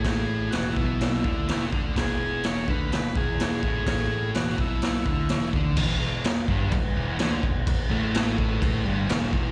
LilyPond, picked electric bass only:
\new Staff \with { instrumentName = "Picked electric bass" } { \clef bass \time 4/4 \key e \major \tempo 4 = 126 a,,4 e,,8 b,,4 d,8 e,,8 d,8 | e,,4. d,8 e,,8 e,,4 a,,8~ | a,,4 e,,8 b,,4 d,8 e,,8 d,8 | e,,8 e,,8 r8 g,,8 r8 e,,8 d,8 e,,8 |
r8 a,,2 g,,8 e,,4 | }